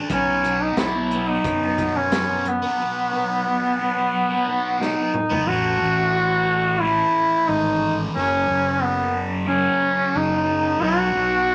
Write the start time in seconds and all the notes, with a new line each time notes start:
0.09 B1 B2 F#3 B3 C#4, kick, closed hi-hat
0.42 B2 F#3 B3, closed hi-hat
0.62 D#4
0.76 B1 B2 F#3 B3 E4, snare, closed hi-hat
0.94 F#3 B3
1.11 B2 F#3 B3, closed hi-hat
1.29 F#3 B3 D#4
1.44 F#2, kick, closed hi-hat
1.62 F#3 B3
1.78 B2 F#3, kick, closed hi-hat
1.83 B3
1.97 C#4
2.12 B2 F#3 B3, snare, closed hi-hat
2.29 F#3 B3
2.46 B3, muted distorted electric guitar stroke, closed hi-hat
2.62 F#3 B3
2.79 B2 F#3 B3
3.12 B2 F#3 B3
3.46 B2 F#3 B3
3.63 F#3 B3
3.79 B2 F#3 B3
3.96 F#3 B3
4.29 F#3 B3
4.45 B2 F#3 B3
4.79 B2 F#3 B3 D#4, snare
4.96 F#3 B3
5.13 muted distorted electric guitar stroke, mid tom
5.29 F#3 B3, floor tom
5.47 A1 A2 E3 F#4
5.52 A3
5.82 A1
6.81 A2 E3 A3 E4
7.49 G#1 D#4
8.14 F#1 F#2 C#3 C#4
8.18 F#3
8.49 F#1
8.82 B3
9.47 F#2 C#3 F#3 C#4
10.15 F#1 D#4
10.80 B1 B2 F#3 B3 F#4
11.15 B1